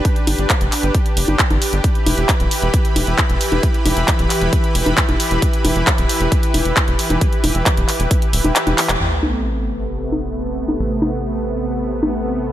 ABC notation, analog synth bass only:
X:1
M:4/4
L:1/16
Q:1/4=134
K:Am
V:1 name="Analog synth bass" clef=bass
z2 G,,, G,,, z F,,, z G,,, z2 F,,, G,,, z G,,, z G,,, | z2 E,,, E,,, z D,,, z E,,, z2 E,,, E,,, z E,,, z E,,, | z2 E,,, E,,, z D,,, z E,,, z2 E,,, E,,, z E,,, z E,,, | z2 E,,, E,,, z D,,, z E,,, z2 E,,, E,,, z E,,, z E,,, |
z2 E,,, E,,, z D,,, z E,,, z2 D,,, E,,, z E,,, z E,,, | A,,,16 | A,,,16 |]